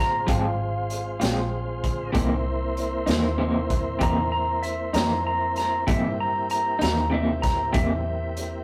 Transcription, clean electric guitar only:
0.27 0.46 F3 medium
0.27 0.47 G#3 medium
0.27 0.47 C4 medium
0.27 0.47 F4 medium
1.20 1.41 G#3 soft
1.20 1.40 C4 soft
1.20 1.39 F4 soft
2.12 2.32 C3 medium
2.12 2.33 E3 medium
2.12 2.33 A#3 medium
2.12 2.34 D#4 medium
3.06 3.28 E3 soft
3.06 3.27 A#3 soft
3.06 3.26 D#4 medium
3.38 3.57 C3 medium
3.38 3.57 E3 medium
3.38 3.58 A#3 medium
3.38 3.59 D#4 medium
3.99 4.19 C3 medium
3.99 4.20 E3 medium
3.99 4.20 A#3 medium
3.99 4.20 D#4 medium
4.93 5.14 E3 soft
4.93 5.13 A#3 soft
4.93 5.13 D#4 soft
5.87 6.06 C3 medium
5.87 6.07 E3 medium
5.87 6.07 A#3 medium
5.87 6.07 D#4 medium
6.79 7.00 E3 soft
6.79 7.00 A#3 soft
6.79 6.99 D#4 medium
7.10 7.30 C3 medium
7.10 7.30 E3 medium
7.10 7.31 A#3 medium
7.10 7.32 D#4 medium
7.73 7.92 C3 medium
7.73 7.92 E3 medium
7.73 7.93 A#3 medium
7.73 7.93 D#4 medium

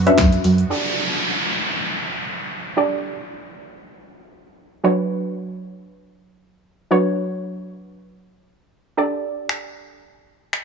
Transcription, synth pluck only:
0.06 0.46 C#4 medium
0.06 0.47 D4 medium
0.06 0.47 F#4 medium
0.06 0.47 B4 medium
0.06 0.47 E5 loud
0.70 2.73 D4 medium
0.70 2.73 G4 medium
0.70 2.73 A4 medium
0.70 2.73 D5 medium
2.77 4.80 D4 medium
2.77 4.80 G4 medium
2.77 4.80 A4 medium
2.77 4.80 D5 medium
4.84 6.87 F#3 medium
4.84 6.87 D4 medium
4.84 6.87 F#4 medium
4.84 6.87 B4 medium
4.84 6.87 C#5 medium
6.91 8.94 F#3 medium
6.91 8.94 D4 medium
6.91 8.94 F#4 medium
6.91 8.94 B4 medium
6.91 8.94 C#5 medium
8.97 10.64 D4 medium
8.97 10.64 G4 medium
8.97 10.64 A4 medium
8.97 10.64 D5 medium

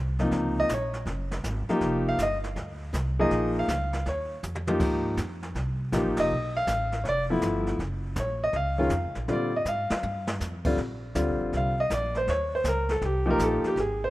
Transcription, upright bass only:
0.00 0.31 C2 medium
0.31 0.68 C#2 medium
0.69 1.05 A#1 medium
1.06 1.42 F#1 medium
1.44 1.67 G#1 medium
1.68 muted upright bass stroke soft
1.81 2.17 F1 medium
2.18 2.55 G1 medium
2.56 2.92 D2 medium
2.93 3.29 C2 medium
3.30 3.67 A#1 medium
3.68 4.04 C#2 medium
4.06 4.42 D#2 medium
4.43 4.79 F2 medium
4.80 5.16 G#2 medium
5.17 5.54 F2 medium
5.55 5.91 C2 medium
5.92 6.06 A#1 medium
6.06 6.18 G#1 medium
6.18 6.30 F1 medium
6.31 6.67 B1 medium
6.67 7.03 A1 medium
7.05 7.41 F1 medium
7.42 7.78 G1 medium
7.79 8.15 F#1 medium
8.16 8.53 A#1 medium
8.53 8.90 C#2 medium
8.90 9.05 F2 medium
9.03 9.16 C#2 medium
9.16 9.28 A#1 medium
9.28 9.64 A#2 medium
9.65 9.88 G#2 medium
9.91 muted upright bass stroke soft
10.03 10.39 G2 medium
10.41 10.77 F2 medium
10.77 11.14 A#1 medium
11.15 11.31 D2 medium
11.29 11.40 A#1 soft
11.40 11.52 G1 medium
11.53 11.89 C2 medium
11.90 12.26 A#1 medium
12.27 12.64 D#2 medium
12.64 13.01 C#2 medium
13.01 13.38 C2 medium
13.38 13.62 A#1 medium
13.64 muted upright bass stroke soft
13.76 14.10 G#1 medium

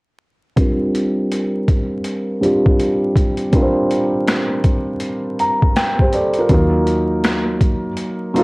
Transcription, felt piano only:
0.56 1.94 G3 medium
0.56 1.94 C4 medium
0.56 1.94 D4 medium
0.56 1.95 F4 medium
0.56 1.95 A#4 medium
2.41 3.44 G3 medium
2.41 3.45 C4 medium
2.41 3.45 D4 medium
2.41 3.46 F4 medium
2.41 3.46 G4 medium
3.52 4.90 G3 medium
3.52 4.90 C4 medium
3.52 4.91 D4 medium
3.52 4.91 F4 medium
3.52 3.63 A#4 medium
3.62 4.95 C5 medium
5.40 5.74 A#5 medium
5.76 6.10 G5 medium
6.01 6.13 G4 medium
6.01 6.12 C5 medium
6.14 6.36 A4 medium
6.14 6.48 D5 medium
6.38 6.50 F4 soft
6.38 6.51 A#4 medium
6.49 7.87 F#3 medium
6.49 7.87 A#3 medium
6.49 7.87 D#4 medium
6.49 7.88 F4 medium
6.49 7.88 A#4 medium
8.34 8.44 F#3 medium
8.34 8.44 A#3 medium
8.34 8.44 D#4 medium
8.34 8.44 F4 medium
8.34 8.44 A4 medium

